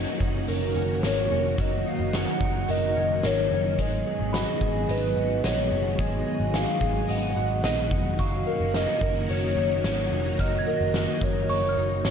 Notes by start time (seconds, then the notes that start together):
Already playing: D#3 F#3 A#3 C#4 D#4 F#4
0.20 F#1 D#4, kick
0.48 F#1 A#4, closed hi-hat
0.75 F#1 C#4
1.03 G#1 A#4 C#5, snare, closed hi-hat
1.31 F1 C#4
1.58 F#1 F#3 D#4 D#5, kick, closed hi-hat
1.86 D#4 F5
2.00 F#1
2.13 C#4 F#5, snare, closed hi-hat
2.41 F#1 D#4, kick
2.68 F#1 A#4 D#5, closed hi-hat
2.96 F#1 C#4
3.23 G#1 A#4 C#5, snare, closed hi-hat
3.51 F#1 C#4
3.79 G#1 G#3 B3 D#5, kick, closed hi-hat
4.07 G#4
4.20 G#1
4.33 F#4 D#5 B5, snare, closed hi-hat
4.61 G#1 G#4, kick
4.89 G#1 B4 D#5, closed hi-hat
5.16 G#1 F#4
5.44 A#1 C#5 D#5, snare, closed hi-hat
5.71 F#1 F#4
5.98 G#1 G#3 D#5, kick, closed hi-hat
6.26 G#4
6.40 G#1
6.53 F#4 F5 G#5, snare, closed hi-hat
6.81 G#1 G#4, kick
7.08 G#1 D#5 F#5, closed hi-hat
7.36 G#1 F#4
7.64 A#1 D#5, snare, closed hi-hat
7.91 F1 F#4, kick
8.19 F#1 D#3 F#3 A#3 C#4 F#4 F5 C#6, kick, closed hi-hat
8.46 A#4
8.60 F#1
8.74 D#4 D#5, snare, closed hi-hat
9.01 F#1 A#4, kick
9.29 F#1 C#5, closed hi-hat
9.57 F#1 D#4
9.84 G#1 C#5, snare, closed hi-hat
10.12 F1 D#4
10.39 F#1 F#3 D#4 D#5 F6, kick, closed hi-hat
10.58 G#6
10.66 A#4 D#5
10.77 F#1 A#6
10.94 D#4 D#5, snare, closed hi-hat
11.21 F#1 A#4 C#5, kick
11.49 F#1 C#5 C#6, closed hi-hat
11.69 F6
11.77 F#1 D#4
12.04 G#1 C#5, snare, closed hi-hat